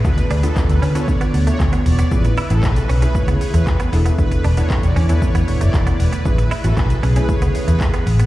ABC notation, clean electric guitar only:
X:1
M:4/4
L:1/16
Q:1/4=116
K:A
V:1 name="Clean electric guitar"
z2 D B, z2 C C z B, z A, z B, z B, | z2 E B, z2 C C z B, z A, z B, z B, | z2 D B, z2 C C z B, z A, z B, z B, | z2 E B, z2 C C z B, z A, z B, z B, |]